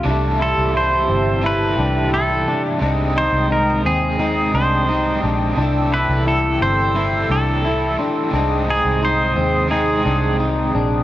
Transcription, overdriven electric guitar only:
\new Staff \with { instrumentName = "Overdriven electric guitar" } { \clef bass \time 4/4 \key c \major \tempo 4 = 87 <c e g e' a'>2 <c e g e' a'>2 | <c aes c' ees'>2 <c aes c' ees'>4 <aes c' ees' g'>4 | <c e g e' a'>2 <c e g e' a'>4 <e g e' a'>4 | <c aes c' ees'>2 <c aes c' ees'>2 | }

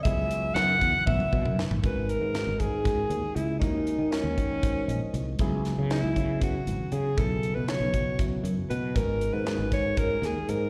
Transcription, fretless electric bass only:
\new Staff \with { instrumentName = "Fretless electric bass" } { \clef bass \time 7/8 \key cis \minor \tempo 4 = 118 cis,16 cis,8. fis,8 e,16 r16 b,,16 r16 b,16 fis,16 r16 a,,16 | \key gis \minor gis,,8. gis,8 gis,,16 gis,4 dis,16 r16 cis,8 | dis,8. dis8 dis,16 dis4 ais,,16 r16 bis,,8 | cis,8. cis8 cis,16 cis4 gis,,16 r16 cis8 |
b,,8. b,8 b,,16 b,4 fis,16 r16 b,8 | gis,,8. gis,8 gis,,16 gis,4 dis,16 r16 gis,8 | }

